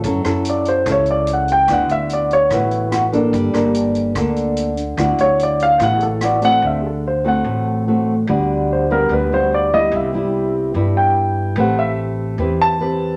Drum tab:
HH |xxxxxxxx|xxxxxxxx|xxxxxxxx|xxxxxxxx|
SD |-r--r---|r---r-r-|-r--r---|r---r-r-|
BD |o---o---|o---o---|o---o---|o---o---|

HH |--------|--------|--------|--------|
SD |--------|--------|--------|--------|
BD |--------|--------|--------|--------|